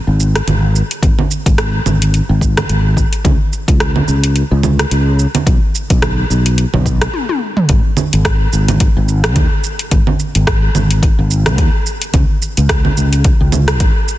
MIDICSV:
0, 0, Header, 1, 3, 480
1, 0, Start_track
1, 0, Key_signature, 5, "minor"
1, 0, Tempo, 555556
1, 886, Time_signature, 4, 2, 24, 8
1, 12254, End_track
2, 0, Start_track
2, 0, Title_t, "Fretless electric bass"
2, 0, Program_c, 0, 35
2, 62, Note_on_c, 0, 32, 92
2, 341, Note_off_c, 0, 32, 0
2, 407, Note_on_c, 0, 32, 88
2, 697, Note_off_c, 0, 32, 0
2, 887, Note_on_c, 0, 32, 90
2, 969, Note_off_c, 0, 32, 0
2, 1263, Note_on_c, 0, 32, 81
2, 1541, Note_off_c, 0, 32, 0
2, 1606, Note_on_c, 0, 32, 73
2, 1897, Note_off_c, 0, 32, 0
2, 1981, Note_on_c, 0, 32, 95
2, 2260, Note_off_c, 0, 32, 0
2, 2326, Note_on_c, 0, 32, 91
2, 2617, Note_off_c, 0, 32, 0
2, 2806, Note_on_c, 0, 37, 86
2, 2888, Note_off_c, 0, 37, 0
2, 3181, Note_on_c, 0, 37, 84
2, 3460, Note_off_c, 0, 37, 0
2, 3525, Note_on_c, 0, 37, 69
2, 3816, Note_off_c, 0, 37, 0
2, 3900, Note_on_c, 0, 37, 102
2, 4180, Note_off_c, 0, 37, 0
2, 4244, Note_on_c, 0, 37, 97
2, 4535, Note_off_c, 0, 37, 0
2, 4723, Note_on_c, 0, 35, 90
2, 4807, Note_off_c, 0, 35, 0
2, 5100, Note_on_c, 0, 35, 82
2, 5380, Note_off_c, 0, 35, 0
2, 5444, Note_on_c, 0, 35, 73
2, 5736, Note_off_c, 0, 35, 0
2, 5821, Note_on_c, 0, 35, 99
2, 6100, Note_off_c, 0, 35, 0
2, 6648, Note_on_c, 0, 32, 92
2, 6730, Note_off_c, 0, 32, 0
2, 7027, Note_on_c, 0, 32, 86
2, 7303, Note_off_c, 0, 32, 0
2, 7370, Note_on_c, 0, 32, 75
2, 7658, Note_off_c, 0, 32, 0
2, 7747, Note_on_c, 0, 32, 103
2, 8087, Note_off_c, 0, 32, 0
2, 8087, Note_on_c, 0, 39, 96
2, 8169, Note_off_c, 0, 39, 0
2, 8568, Note_on_c, 0, 32, 96
2, 8649, Note_off_c, 0, 32, 0
2, 8945, Note_on_c, 0, 32, 85
2, 9222, Note_off_c, 0, 32, 0
2, 9288, Note_on_c, 0, 32, 78
2, 9578, Note_off_c, 0, 32, 0
2, 9665, Note_on_c, 0, 32, 108
2, 10008, Note_off_c, 0, 32, 0
2, 10008, Note_on_c, 0, 39, 95
2, 10090, Note_off_c, 0, 39, 0
2, 10488, Note_on_c, 0, 37, 90
2, 10570, Note_off_c, 0, 37, 0
2, 10864, Note_on_c, 0, 37, 84
2, 11142, Note_off_c, 0, 37, 0
2, 11207, Note_on_c, 0, 37, 73
2, 11497, Note_off_c, 0, 37, 0
2, 11582, Note_on_c, 0, 37, 104
2, 11926, Note_off_c, 0, 37, 0
2, 11926, Note_on_c, 0, 32, 93
2, 12008, Note_off_c, 0, 32, 0
2, 12254, End_track
3, 0, Start_track
3, 0, Title_t, "Drums"
3, 174, Note_on_c, 9, 82, 70
3, 260, Note_off_c, 9, 82, 0
3, 307, Note_on_c, 9, 37, 66
3, 307, Note_on_c, 9, 42, 47
3, 310, Note_on_c, 9, 82, 40
3, 393, Note_off_c, 9, 37, 0
3, 393, Note_off_c, 9, 42, 0
3, 397, Note_off_c, 9, 82, 0
3, 411, Note_on_c, 9, 42, 39
3, 411, Note_on_c, 9, 64, 74
3, 414, Note_on_c, 9, 82, 31
3, 497, Note_off_c, 9, 42, 0
3, 497, Note_off_c, 9, 64, 0
3, 501, Note_off_c, 9, 82, 0
3, 653, Note_on_c, 9, 82, 66
3, 739, Note_off_c, 9, 82, 0
3, 786, Note_on_c, 9, 42, 49
3, 789, Note_on_c, 9, 82, 42
3, 873, Note_off_c, 9, 42, 0
3, 876, Note_off_c, 9, 82, 0
3, 886, Note_on_c, 9, 36, 113
3, 889, Note_on_c, 9, 42, 43
3, 892, Note_on_c, 9, 82, 32
3, 973, Note_off_c, 9, 36, 0
3, 975, Note_off_c, 9, 42, 0
3, 979, Note_off_c, 9, 82, 0
3, 1025, Note_on_c, 9, 64, 77
3, 1111, Note_off_c, 9, 64, 0
3, 1131, Note_on_c, 9, 82, 70
3, 1218, Note_off_c, 9, 82, 0
3, 1263, Note_on_c, 9, 36, 107
3, 1265, Note_on_c, 9, 42, 52
3, 1268, Note_on_c, 9, 82, 39
3, 1349, Note_off_c, 9, 36, 0
3, 1351, Note_off_c, 9, 42, 0
3, 1355, Note_off_c, 9, 82, 0
3, 1367, Note_on_c, 9, 37, 67
3, 1367, Note_on_c, 9, 42, 42
3, 1370, Note_on_c, 9, 82, 30
3, 1453, Note_off_c, 9, 37, 0
3, 1453, Note_off_c, 9, 42, 0
3, 1457, Note_off_c, 9, 82, 0
3, 1607, Note_on_c, 9, 64, 73
3, 1610, Note_on_c, 9, 82, 66
3, 1693, Note_off_c, 9, 64, 0
3, 1697, Note_off_c, 9, 82, 0
3, 1745, Note_on_c, 9, 42, 51
3, 1748, Note_on_c, 9, 82, 43
3, 1831, Note_off_c, 9, 42, 0
3, 1834, Note_off_c, 9, 82, 0
3, 1848, Note_on_c, 9, 42, 39
3, 1851, Note_on_c, 9, 82, 30
3, 1934, Note_off_c, 9, 42, 0
3, 1938, Note_off_c, 9, 82, 0
3, 2086, Note_on_c, 9, 36, 54
3, 2093, Note_on_c, 9, 82, 72
3, 2172, Note_off_c, 9, 36, 0
3, 2180, Note_off_c, 9, 82, 0
3, 2224, Note_on_c, 9, 37, 68
3, 2224, Note_on_c, 9, 42, 50
3, 2224, Note_on_c, 9, 64, 74
3, 2227, Note_on_c, 9, 82, 37
3, 2310, Note_off_c, 9, 37, 0
3, 2310, Note_off_c, 9, 42, 0
3, 2310, Note_off_c, 9, 64, 0
3, 2314, Note_off_c, 9, 82, 0
3, 2328, Note_on_c, 9, 42, 39
3, 2331, Note_on_c, 9, 82, 30
3, 2414, Note_off_c, 9, 42, 0
3, 2417, Note_off_c, 9, 82, 0
3, 2565, Note_on_c, 9, 36, 59
3, 2570, Note_on_c, 9, 82, 71
3, 2652, Note_off_c, 9, 36, 0
3, 2656, Note_off_c, 9, 82, 0
3, 2701, Note_on_c, 9, 42, 50
3, 2704, Note_on_c, 9, 82, 39
3, 2787, Note_off_c, 9, 42, 0
3, 2791, Note_off_c, 9, 82, 0
3, 2805, Note_on_c, 9, 36, 108
3, 2807, Note_on_c, 9, 42, 44
3, 2807, Note_on_c, 9, 64, 82
3, 2811, Note_on_c, 9, 82, 29
3, 2892, Note_off_c, 9, 36, 0
3, 2894, Note_off_c, 9, 42, 0
3, 2894, Note_off_c, 9, 64, 0
3, 2897, Note_off_c, 9, 82, 0
3, 3049, Note_on_c, 9, 82, 69
3, 3135, Note_off_c, 9, 82, 0
3, 3180, Note_on_c, 9, 36, 103
3, 3183, Note_on_c, 9, 42, 55
3, 3186, Note_on_c, 9, 82, 42
3, 3266, Note_off_c, 9, 36, 0
3, 3269, Note_off_c, 9, 42, 0
3, 3272, Note_off_c, 9, 82, 0
3, 3286, Note_on_c, 9, 37, 68
3, 3286, Note_on_c, 9, 42, 41
3, 3290, Note_on_c, 9, 82, 29
3, 3373, Note_off_c, 9, 37, 0
3, 3373, Note_off_c, 9, 42, 0
3, 3376, Note_off_c, 9, 82, 0
3, 3419, Note_on_c, 9, 64, 73
3, 3506, Note_off_c, 9, 64, 0
3, 3526, Note_on_c, 9, 82, 66
3, 3613, Note_off_c, 9, 82, 0
3, 3659, Note_on_c, 9, 42, 55
3, 3663, Note_on_c, 9, 82, 40
3, 3746, Note_off_c, 9, 42, 0
3, 3749, Note_off_c, 9, 82, 0
3, 3764, Note_on_c, 9, 42, 42
3, 3767, Note_on_c, 9, 82, 30
3, 3850, Note_off_c, 9, 42, 0
3, 3853, Note_off_c, 9, 82, 0
3, 4004, Note_on_c, 9, 64, 78
3, 4007, Note_on_c, 9, 82, 69
3, 4090, Note_off_c, 9, 64, 0
3, 4093, Note_off_c, 9, 82, 0
3, 4142, Note_on_c, 9, 37, 66
3, 4142, Note_on_c, 9, 42, 50
3, 4146, Note_on_c, 9, 82, 39
3, 4229, Note_off_c, 9, 37, 0
3, 4229, Note_off_c, 9, 42, 0
3, 4232, Note_off_c, 9, 82, 0
3, 4246, Note_on_c, 9, 42, 46
3, 4249, Note_on_c, 9, 82, 29
3, 4332, Note_off_c, 9, 42, 0
3, 4336, Note_off_c, 9, 82, 0
3, 4485, Note_on_c, 9, 82, 66
3, 4572, Note_off_c, 9, 82, 0
3, 4620, Note_on_c, 9, 42, 54
3, 4620, Note_on_c, 9, 64, 80
3, 4623, Note_on_c, 9, 82, 41
3, 4706, Note_off_c, 9, 42, 0
3, 4706, Note_off_c, 9, 64, 0
3, 4709, Note_off_c, 9, 82, 0
3, 4723, Note_on_c, 9, 36, 116
3, 4725, Note_on_c, 9, 42, 47
3, 4728, Note_on_c, 9, 82, 31
3, 4809, Note_off_c, 9, 36, 0
3, 4811, Note_off_c, 9, 42, 0
3, 4814, Note_off_c, 9, 82, 0
3, 4967, Note_on_c, 9, 82, 72
3, 5054, Note_off_c, 9, 82, 0
3, 5099, Note_on_c, 9, 36, 105
3, 5099, Note_on_c, 9, 42, 54
3, 5102, Note_on_c, 9, 82, 39
3, 5185, Note_off_c, 9, 42, 0
3, 5186, Note_off_c, 9, 36, 0
3, 5189, Note_off_c, 9, 82, 0
3, 5205, Note_on_c, 9, 37, 76
3, 5205, Note_on_c, 9, 42, 42
3, 5205, Note_on_c, 9, 64, 76
3, 5208, Note_on_c, 9, 82, 30
3, 5291, Note_off_c, 9, 37, 0
3, 5291, Note_off_c, 9, 42, 0
3, 5291, Note_off_c, 9, 64, 0
3, 5294, Note_off_c, 9, 82, 0
3, 5450, Note_on_c, 9, 82, 69
3, 5536, Note_off_c, 9, 82, 0
3, 5580, Note_on_c, 9, 42, 58
3, 5583, Note_on_c, 9, 82, 38
3, 5666, Note_off_c, 9, 42, 0
3, 5670, Note_off_c, 9, 82, 0
3, 5685, Note_on_c, 9, 42, 44
3, 5688, Note_on_c, 9, 82, 28
3, 5771, Note_off_c, 9, 42, 0
3, 5774, Note_off_c, 9, 82, 0
3, 5820, Note_on_c, 9, 64, 82
3, 5907, Note_off_c, 9, 64, 0
3, 5924, Note_on_c, 9, 36, 51
3, 5929, Note_on_c, 9, 82, 65
3, 6011, Note_off_c, 9, 36, 0
3, 6015, Note_off_c, 9, 82, 0
3, 6061, Note_on_c, 9, 37, 69
3, 6061, Note_on_c, 9, 42, 52
3, 6064, Note_on_c, 9, 82, 40
3, 6147, Note_off_c, 9, 37, 0
3, 6147, Note_off_c, 9, 42, 0
3, 6151, Note_off_c, 9, 82, 0
3, 6165, Note_on_c, 9, 48, 59
3, 6251, Note_off_c, 9, 48, 0
3, 6300, Note_on_c, 9, 48, 60
3, 6387, Note_off_c, 9, 48, 0
3, 6538, Note_on_c, 9, 45, 77
3, 6625, Note_off_c, 9, 45, 0
3, 6642, Note_on_c, 9, 42, 55
3, 6646, Note_on_c, 9, 82, 33
3, 6647, Note_on_c, 9, 36, 104
3, 6729, Note_off_c, 9, 42, 0
3, 6732, Note_off_c, 9, 82, 0
3, 6733, Note_off_c, 9, 36, 0
3, 6884, Note_on_c, 9, 64, 77
3, 6887, Note_on_c, 9, 82, 77
3, 6970, Note_off_c, 9, 64, 0
3, 6973, Note_off_c, 9, 82, 0
3, 7024, Note_on_c, 9, 42, 47
3, 7027, Note_on_c, 9, 82, 41
3, 7110, Note_off_c, 9, 42, 0
3, 7114, Note_off_c, 9, 82, 0
3, 7127, Note_on_c, 9, 36, 105
3, 7129, Note_on_c, 9, 37, 71
3, 7129, Note_on_c, 9, 42, 50
3, 7132, Note_on_c, 9, 82, 30
3, 7214, Note_off_c, 9, 36, 0
3, 7216, Note_off_c, 9, 37, 0
3, 7216, Note_off_c, 9, 42, 0
3, 7219, Note_off_c, 9, 82, 0
3, 7369, Note_on_c, 9, 82, 76
3, 7455, Note_off_c, 9, 82, 0
3, 7503, Note_on_c, 9, 42, 47
3, 7503, Note_on_c, 9, 64, 73
3, 7507, Note_on_c, 9, 82, 44
3, 7590, Note_off_c, 9, 42, 0
3, 7590, Note_off_c, 9, 64, 0
3, 7593, Note_off_c, 9, 82, 0
3, 7605, Note_on_c, 9, 42, 55
3, 7607, Note_on_c, 9, 36, 112
3, 7608, Note_on_c, 9, 82, 34
3, 7692, Note_off_c, 9, 42, 0
3, 7694, Note_off_c, 9, 36, 0
3, 7695, Note_off_c, 9, 82, 0
3, 7849, Note_on_c, 9, 82, 76
3, 7935, Note_off_c, 9, 82, 0
3, 7982, Note_on_c, 9, 37, 77
3, 7982, Note_on_c, 9, 42, 42
3, 7985, Note_on_c, 9, 82, 42
3, 8068, Note_off_c, 9, 37, 0
3, 8068, Note_off_c, 9, 42, 0
3, 8072, Note_off_c, 9, 82, 0
3, 8085, Note_on_c, 9, 42, 56
3, 8085, Note_on_c, 9, 64, 79
3, 8087, Note_on_c, 9, 36, 104
3, 8088, Note_on_c, 9, 82, 31
3, 8171, Note_off_c, 9, 42, 0
3, 8171, Note_off_c, 9, 64, 0
3, 8173, Note_off_c, 9, 36, 0
3, 8175, Note_off_c, 9, 82, 0
3, 8328, Note_on_c, 9, 82, 72
3, 8415, Note_off_c, 9, 82, 0
3, 8461, Note_on_c, 9, 42, 44
3, 8465, Note_on_c, 9, 82, 43
3, 8548, Note_off_c, 9, 42, 0
3, 8551, Note_off_c, 9, 82, 0
3, 8566, Note_on_c, 9, 42, 57
3, 8567, Note_on_c, 9, 36, 109
3, 8569, Note_on_c, 9, 82, 33
3, 8652, Note_off_c, 9, 42, 0
3, 8653, Note_off_c, 9, 36, 0
3, 8656, Note_off_c, 9, 82, 0
3, 8701, Note_on_c, 9, 64, 77
3, 8787, Note_off_c, 9, 64, 0
3, 8809, Note_on_c, 9, 82, 81
3, 8895, Note_off_c, 9, 82, 0
3, 8943, Note_on_c, 9, 42, 44
3, 8946, Note_on_c, 9, 82, 41
3, 9029, Note_off_c, 9, 42, 0
3, 9033, Note_off_c, 9, 82, 0
3, 9047, Note_on_c, 9, 36, 106
3, 9048, Note_on_c, 9, 37, 77
3, 9048, Note_on_c, 9, 42, 49
3, 9052, Note_on_c, 9, 82, 31
3, 9133, Note_off_c, 9, 36, 0
3, 9135, Note_off_c, 9, 37, 0
3, 9135, Note_off_c, 9, 42, 0
3, 9138, Note_off_c, 9, 82, 0
3, 9287, Note_on_c, 9, 64, 70
3, 9291, Note_on_c, 9, 82, 79
3, 9374, Note_off_c, 9, 64, 0
3, 9377, Note_off_c, 9, 82, 0
3, 9422, Note_on_c, 9, 42, 45
3, 9426, Note_on_c, 9, 82, 45
3, 9509, Note_off_c, 9, 42, 0
3, 9512, Note_off_c, 9, 82, 0
3, 9527, Note_on_c, 9, 36, 113
3, 9529, Note_on_c, 9, 42, 54
3, 9533, Note_on_c, 9, 82, 32
3, 9614, Note_off_c, 9, 36, 0
3, 9616, Note_off_c, 9, 42, 0
3, 9619, Note_off_c, 9, 82, 0
3, 9771, Note_on_c, 9, 82, 79
3, 9857, Note_off_c, 9, 82, 0
3, 9901, Note_on_c, 9, 37, 74
3, 9901, Note_on_c, 9, 42, 45
3, 9901, Note_on_c, 9, 64, 75
3, 9905, Note_on_c, 9, 82, 45
3, 9988, Note_off_c, 9, 37, 0
3, 9988, Note_off_c, 9, 42, 0
3, 9988, Note_off_c, 9, 64, 0
3, 9991, Note_off_c, 9, 82, 0
3, 10006, Note_on_c, 9, 42, 55
3, 10007, Note_on_c, 9, 36, 110
3, 10010, Note_on_c, 9, 82, 31
3, 10093, Note_off_c, 9, 36, 0
3, 10093, Note_off_c, 9, 42, 0
3, 10096, Note_off_c, 9, 82, 0
3, 10249, Note_on_c, 9, 82, 74
3, 10336, Note_off_c, 9, 82, 0
3, 10381, Note_on_c, 9, 42, 44
3, 10385, Note_on_c, 9, 82, 43
3, 10468, Note_off_c, 9, 42, 0
3, 10471, Note_off_c, 9, 82, 0
3, 10486, Note_on_c, 9, 36, 111
3, 10486, Note_on_c, 9, 42, 56
3, 10486, Note_on_c, 9, 64, 70
3, 10489, Note_on_c, 9, 82, 36
3, 10572, Note_off_c, 9, 42, 0
3, 10572, Note_off_c, 9, 64, 0
3, 10573, Note_off_c, 9, 36, 0
3, 10575, Note_off_c, 9, 82, 0
3, 10731, Note_on_c, 9, 82, 80
3, 10818, Note_off_c, 9, 82, 0
3, 10863, Note_on_c, 9, 42, 39
3, 10866, Note_on_c, 9, 82, 46
3, 10949, Note_off_c, 9, 42, 0
3, 10952, Note_off_c, 9, 82, 0
3, 10966, Note_on_c, 9, 36, 106
3, 10967, Note_on_c, 9, 37, 73
3, 10967, Note_on_c, 9, 42, 52
3, 10971, Note_on_c, 9, 82, 34
3, 11052, Note_off_c, 9, 36, 0
3, 11054, Note_off_c, 9, 37, 0
3, 11054, Note_off_c, 9, 42, 0
3, 11057, Note_off_c, 9, 82, 0
3, 11101, Note_on_c, 9, 64, 68
3, 11187, Note_off_c, 9, 64, 0
3, 11210, Note_on_c, 9, 82, 77
3, 11296, Note_off_c, 9, 82, 0
3, 11341, Note_on_c, 9, 42, 42
3, 11344, Note_on_c, 9, 82, 47
3, 11427, Note_off_c, 9, 42, 0
3, 11430, Note_off_c, 9, 82, 0
3, 11443, Note_on_c, 9, 42, 48
3, 11445, Note_on_c, 9, 36, 113
3, 11446, Note_on_c, 9, 82, 33
3, 11529, Note_off_c, 9, 42, 0
3, 11532, Note_off_c, 9, 36, 0
3, 11533, Note_off_c, 9, 82, 0
3, 11684, Note_on_c, 9, 64, 71
3, 11687, Note_on_c, 9, 82, 75
3, 11770, Note_off_c, 9, 64, 0
3, 11773, Note_off_c, 9, 82, 0
3, 11818, Note_on_c, 9, 37, 75
3, 11818, Note_on_c, 9, 42, 44
3, 11821, Note_on_c, 9, 82, 47
3, 11904, Note_off_c, 9, 37, 0
3, 11904, Note_off_c, 9, 42, 0
3, 11908, Note_off_c, 9, 82, 0
3, 11924, Note_on_c, 9, 42, 53
3, 11925, Note_on_c, 9, 36, 111
3, 11927, Note_on_c, 9, 82, 35
3, 12010, Note_off_c, 9, 42, 0
3, 12011, Note_off_c, 9, 36, 0
3, 12014, Note_off_c, 9, 82, 0
3, 12167, Note_on_c, 9, 82, 75
3, 12253, Note_off_c, 9, 82, 0
3, 12254, End_track
0, 0, End_of_file